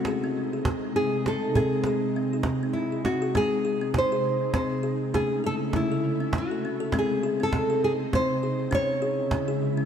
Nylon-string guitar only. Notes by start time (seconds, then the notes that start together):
Already playing: F#4
0.96 G#4
1.28 A4
1.55 G#4
2.73 E4
3.05 F#4
3.37 G#4
3.98 C5
4.55 C5
5.15 G#4
5.46 A4
5.76 E4
6.38 F#4
6.99 G#4
7.43 A4
7.84 G#4
8.15 C5
8.75 C#5